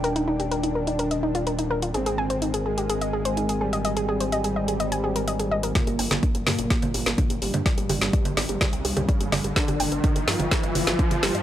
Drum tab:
HH |xx-xxx-xxx-xxx-x|xx-xxx-xxx-xxx-x|xx-xxx-xxx-xxx-x|xxoxxxoxxxoxxxox|
SD |----------------|----------------|----------------|o--o--o-o--o----|
CG |----------------|----------------|----------------|O--O--O--O--O--O|
BD |----------------|----------------|----------------|o---o---o---o---|

HH |xxoxxxoxxxoxxxox|xxoxxxoxxxoxxxox|
SD |o--o--o-o-----o-|o-----o-o--o--o-|
CG |--O--O--O--O--O-|-O--O--O--O--O--|
BD |o---o---o---o---|o---o---o---o---|